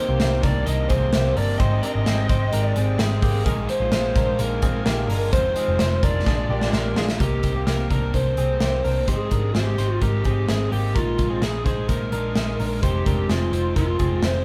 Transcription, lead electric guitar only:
Already playing: C5
0.44 D5
0.66 D#5
0.89 C5
1.36 D5
1.58 D#5
1.83 D#5
2.62 D5
3.00 G#4
3.45 A#4
3.70 C5
4.40 A#4
5.33 C5
6.04 D5
6.73 A#4
6.98 G#4
7.20 G4
7.67 A#4
7.92 A#4
8.14 C5
9.08 G#4
9.55 G4
10.02 G4
10.49 G#4
10.72 G4
10.96 F4
11.43 G#4
11.65 G#4
11.89 A#4
12.83 G4
13.30 F4
13.77 F4
14.24 C5

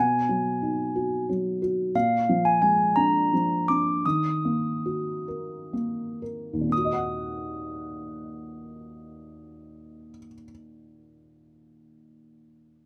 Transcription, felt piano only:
Already playing: B2
0.29 F#3
0.62 D#4
0.96 F#4
1.29 F#3
1.62 F#4
1.95 A#2
2.29 F3
2.62 G#3
2.96 D4
3.33 F3
3.70 D4
4.06 D#3
4.45 A#3
4.86 F#4
5.28 A#4
5.73 A#3
6.22 A#4
6.53 D#2
6.61 A#2
6.69 A#3
6.77 F#4
6.85 D#5
6.93 F#5

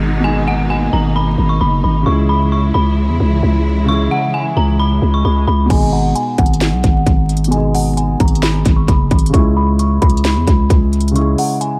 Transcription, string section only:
Already playing: B2 D#3 G#3 D#4
0.25 A#3
2.06 C#3 E3 G#3 E4

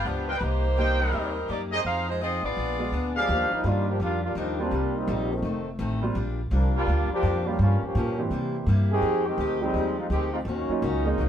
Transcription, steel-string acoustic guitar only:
0.05 G2 F3 B3 D4
0.41 C3 G3 A#3 D#4
0.77 C3 G3 A#3 D#4
1.12 C3 G3 A#3 D#4
1.48 C3 G3 A#3 D#4
1.85 F3 C4 D#4 G#4
2.21 F3 C4 D#4 G#4
2.57 A#2 G#3 B3 D4
2.92 A#2 G#3 B3 D4
3.29 D#3 G3 D4 F4
3.64 D#3 G3 D4 F4
4.00 D#3 G3 D4 F4
4.36 D#3 G3 D4 F4
4.71 C3 G3 A#3 D#4
5.08 C3 G3 A#3 D#4
5.42 F2 D#3 A3 C4
5.79 F2 D#3 A3 C4
6.14 A#2 G3 D4 F4
6.51 A#2 G3 D4 F4
6.88 A#2 G3 D4 F4
7.24 A#2 G3 D4 F4
7.60 G2 F3 A#3 C#4
7.96 G2 F3 A#3 C#4
8.31 C3 G3 A#3 E4
8.67 C3 G3 A#3 E4
9.02 F3 G#3 D#4 G4
9.39 F3 G#3 D#4 G4
9.75 F3 G#3 D#4 G4
10.11 F3 G#3 D#4 G4
10.46 D#3 A#3 C#4 F#4
10.83 D#3 A#3 C#4 F#4
11.18 G#2 F#3 C4 D#4

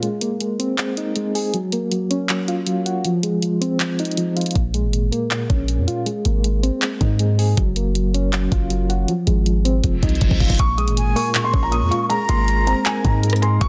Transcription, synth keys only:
0.02 G#3
0.22 A#3
0.41 G#3
0.59 C4
0.78 G#3
0.97 D#4
1.16 G#3
1.35 G#4
1.54 F#3
1.73 A#3
1.91 F#3
2.10 C#4
2.29 F#3
2.48 F4
2.66 F#3
2.86 F#4
3.05 F3
3.23 G#3
3.42 F3
3.61 C4
4.00 D#4
4.17 F3
4.36 F4
4.56 A#2
4.74 G#3
4.93 A#2
5.12 A#3
5.31 A#2
5.49 C#4
5.69 A#2
5.87 F4
6.06 G#3
6.25 A#3
6.44 G#3
6.63 C4
6.82 G#3
7.01 D#4
7.20 G#3
7.39 G#4
7.58 F#3
7.76 A#3
7.95 F#3
8.14 C#4
8.33 F#3
8.52 F4
8.70 F#3
8.89 F#4
9.08 F3
9.27 G#3
9.46 F3
9.65 C4
9.83 F3
10.03 D#4
10.21 F3
10.40 F4
10.60 A#2
10.78 G#3
10.97 A#2
11.16 A#3
11.35 A#2
11.53 C#4
11.73 A#2
11.91 F4
12.10 G#3
12.29 A#3
12.48 G#3
12.67 C4
12.86 G#3
13.05 D#4
13.24 G#3
13.42 G#4
13.61 F#3

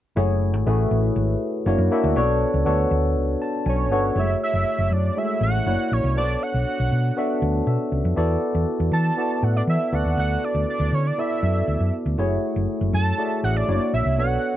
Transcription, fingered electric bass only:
0.17 F#1
0.54 G#1
0.67 A1
0.91 A1
1.16 G#1
1.66 F#1
1.78 F#2
2.04 D2
2.16 B1
2.54 C#2
2.66 D2
2.91 D2
3.16 C#2
3.66 B1
3.91 G1
4.16 F#1
4.53 F#1
4.79 F#1
4.91 F#2
5.41 A1
5.66 F#1
5.92 A#1
6.04 C2
6.16 B1
6.54 B1
6.80 B1
6.92 B2
7.42 D2
7.67 B2
7.92 C#2
8.05 F2
8.17 E2
8.55 E2
8.80 E2
8.92 E3
9.43 A2
9.67 E3
9.93 D2
10.05 D#2
10.17 D2
10.55 D2
10.80 D2
10.92 D3
11.43 F#2
11.68 D2
11.80 F#2
12.06 D2
12.18 F#1
12.56 F#1
12.81 F#1
12.93 F#2
13.43 A1
13.68 F#1
13.94 A#1
14.06 C2
14.18 B1

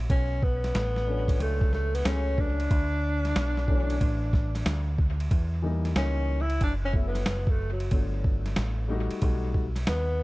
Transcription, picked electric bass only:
0.10 B1
0.75 A1
1.40 C#2
2.05 C#2
2.71 D2
3.36 B1
4.01 A1
4.66 D2
5.31 E2
5.96 C#2
6.61 F#1
7.27 F#1
7.91 G1
8.57 A1
9.11 muted picked electric bass stroke
9.22 B1
9.88 D#2

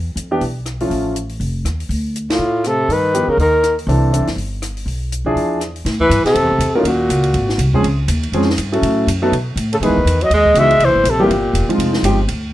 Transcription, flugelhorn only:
2.32 F4
2.67 A4
2.93 B4
3.30 A#4
3.40 A#4
6.01 B4
6.25 A4
6.76 F4
6.86 F#4
9.73 A4
9.84 B4
10.23 D#5
10.35 D#5
10.59 E5
10.85 C5
11.10 A4
11.23 G4

